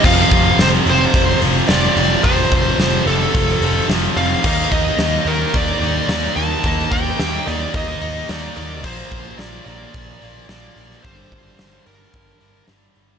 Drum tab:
CC |x---------------|----------------|x---------------|----------------|
HH |--o-o-o-o-o-o-o-|o-o-o-o-o-o-o-o-|--o-o-o-o-o-o-o-|o-o-o-o-o-o-o-o-|
SD |----o-------o---|----o-------o---|----o-------o---|----o-------o---|
BD |o-o-----o-------|o-o-----o-------|o-o-----o-------|o-o-----o-------|

CC |x---------------|----------------|
HH |--o-o-o-o-o-o-o-|o-o-o-o-o-o-o-o-|
SD |----o-------o--o|----o-------o---|
BD |o-o-----o-------|o-o-----o-------|